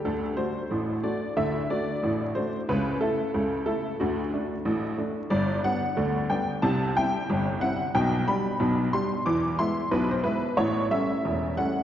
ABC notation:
X:1
M:2/4
L:1/16
Q:"Swing 16ths" 1/4=91
K:G
V:1 name="Honky-tonk piano"
A2 c4 d2 | e2 d4 c2 | B2 A4 A2 | F4 z4 |
d2 f4 g2 | a2 g4 f2 | g2 b4 c'2 | d'2 c'2 B c B2 |
^c2 e4 f2 |]
V:2 name="Honky-tonk piano" clef=bass
[D,,D,]2 [A,DF]2 [A,,,A,,]2 [A,DF]2 | [D,,D,]2 [A,DF]2 [A,,,A,,]2 [A,DF]2 | [^C,,^C,]2 [A,E]2 [C,,C,]2 [A,E]2 | [D,,D,]2 [A,D]2 [A,,,A,,]2 [A,D]2 |
[G,,,G,,]2 [G,B,D]2 [D,,D,]2 [G,B,D]2 | [C,,C,]2 [G,CE]2 [G,,,G,,]2 [G,CE]2 | [B,,,B,,]2 [G,DG]2 [B,,,B,,]2 [G,DG]2 | [E,,E,]2 [^G,B,E]2 [B,,,B,,]2 [G,B,E]2 |
[A,,,A,,]2 [G,A,^C]2 [E,,,E,,]2 [G,A,C]2 |]